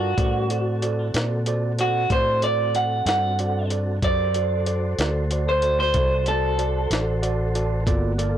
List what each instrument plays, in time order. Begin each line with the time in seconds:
Already playing: fingered electric bass G2, clean electric guitar F#4, tonewheel organ A#4 F5 A5
0.17 fingered electric bass A2, tonewheel organ G3 C#4 A#4, tine electric piano F#4 A4 C5 D5, kick, closed hi-hat
0.50 tonewheel organ C4 F#4 A4, tine electric piano F#4 A4 C5 D5, closed hi-hat
0.82 tine electric piano F#4 A4 C5 D5, closed hi-hat
1.14 fingered electric bass A#2, tine electric piano F#4 A4 C5 D5, snare, closed hi-hat
1.46 tine electric piano F#4 A4 C5 D5, closed hi-hat
1.79 tine electric piano F#4 A4 C5 D5, clean electric guitar F#4, closed hi-hat
2.10 fingered electric bass A2, tine electric piano F#4 A4 C5 D5, clean electric guitar C5, kick, closed hi-hat
2.42 tine electric piano F#4 A4 C5 D5, clean electric guitar D5, closed hi-hat
2.75 tine electric piano F#4 A4 C5 D5, clean electric guitar F#5, closed hi-hat
3.06 fingered electric bass G2, tine electric piano F#4 A4 C5 D5, clean electric guitar F#5, snare, closed hi-hat
3.39 tine electric piano F#4 A4 C5 D5, closed hi-hat
3.70 tine electric piano F#4 A4 C5 D5, closed hi-hat
4.02 fingered electric bass F#2, tine electric piano F#4 A4 C5 D5, tonewheel organ G4 A#4 C5, clean electric guitar D5, kick, closed hi-hat
4.34 tine electric piano F#4 A4 C5 D5, tonewheel organ F#4 A4 C5, closed hi-hat
4.66 tine electric piano F#4 A4 C5 D5, closed hi-hat
4.98 fingered electric bass D2, tine electric piano F#4 A4 C5 D5, snare, closed hi-hat
5.31 tine electric piano F#4 A4 C5 D5, closed hi-hat
5.49 clean electric guitar C5
5.62 tine electric piano F#4 A4 C5 D5, closed hi-hat
5.80 clean electric guitar C5
5.94 fingered electric bass C2, tine electric piano F#4 A4 C5 D5, kick, closed hi-hat
6.26 tine electric piano F#4 A4 C5 D5, clean electric guitar A4, closed hi-hat
6.58 tine electric piano F#4 A4 C5 D5, closed hi-hat
6.90 fingered electric bass A1, tine electric piano F#4 A4 C5 D5, snare, closed hi-hat
7.22 tine electric piano F#4 A4 C5 D5 F#5, closed hi-hat
7.55 tine electric piano F#4 A4 C5 D5 A5, closed hi-hat
7.86 fingered electric bass G1, tonewheel organ A#3 B3 F#4, tine electric piano F4 A4 A#4 D5, kick, closed hi-hat
8.18 tonewheel organ A#3 F4 A4, tine electric piano F4 A4 A#4 D5, closed hi-hat